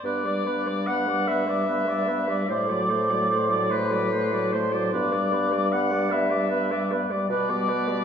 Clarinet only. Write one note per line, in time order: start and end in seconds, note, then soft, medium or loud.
0.05 0.28 B4 medium
0.26 0.48 D5 soft
0.47 0.69 B4 soft
0.68 0.87 D5 soft
0.88 1.08 B4 soft
1.07 1.30 D5 soft
1.28 1.49 B4 soft
1.48 1.67 D5 soft
1.67 1.90 B4 medium
1.88 2.10 D5 soft
2.08 2.29 B4 medium
2.28 2.48 D5 soft
2.49 2.71 C5 medium
2.70 2.91 D5 soft
2.90 3.12 C5 soft
3.11 3.29 D5 soft
3.30 3.52 C5 soft
3.50 3.71 D5 soft
3.70 3.93 C5 soft
3.91 4.11 D5 medium
4.11 4.34 C5 medium
4.32 4.54 D5 medium
4.53 4.74 C5 medium
4.72 4.92 D5 medium
4.92 5.14 B4 medium
5.13 5.34 D5 soft
5.32 5.54 B4 medium
5.53 5.71 D5 medium
5.72 5.92 B4 soft
5.91 6.12 D5 medium
6.10 6.31 B4 medium
6.30 6.50 D5 soft
6.50 6.73 B4 medium
6.71 6.93 D5 medium
6.91 7.12 B4 medium
7.11 7.29 D5 soft
7.30 7.51 B4 medium
7.49 7.70 D5 medium
7.69 7.89 B4 medium
7.87 8.04 D5 medium